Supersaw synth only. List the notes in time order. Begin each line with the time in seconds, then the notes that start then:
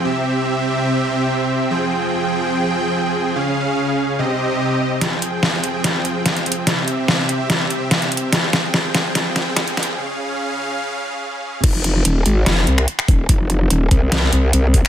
Already playing: C4
0.05 C3 G4 E5
1.71 F3 G#4 G5
3.36 C#3 C#4 F5
4.19 C3 C4 G4 D#5
5.01 F3 C4 G#4 G5
6.67 C3 G4 E5
8.32 F3 C4 G#4 G5
9.98 C#3 C#4 F5